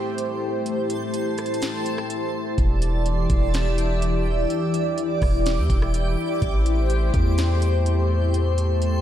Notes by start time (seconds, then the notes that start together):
Already playing: A3 E4 G4 A4 C5 G5 C6
0.18 closed hi-hat
0.66 A5, closed hi-hat
0.90 closed hi-hat
1.14 closed hi-hat
1.38 cross-stick, closed hi-hat, open hi-hat
1.46 closed hi-hat
1.54 closed hi-hat
1.62 snare, closed hi-hat
1.86 closed hi-hat
1.98 cross-stick
2.10 closed hi-hat
2.58 E1 E3 G4 D5 E5 D6, kick, closed hi-hat
2.82 closed hi-hat
3.06 closed hi-hat
3.30 E1, kick, closed hi-hat
3.54 snare, closed hi-hat
3.78 closed hi-hat
4.02 closed hi-hat
4.50 D5, closed hi-hat
4.74 closed hi-hat
4.98 closed hi-hat
5.22 E1, kick, cross-stick, open hi-hat
5.46 snare, closed hi-hat
5.58 E2
5.70 E1, kick, closed hi-hat
5.82 cross-stick
5.94 closed hi-hat
6.42 A1 A3 A4 C5 G5 C6, kick, closed hi-hat
6.66 closed hi-hat
6.90 closed hi-hat
7.14 E2, kick, closed hi-hat
7.38 snare, closed hi-hat
7.62 closed hi-hat
7.86 closed hi-hat
8.34 closed hi-hat
8.58 closed hi-hat
8.82 closed hi-hat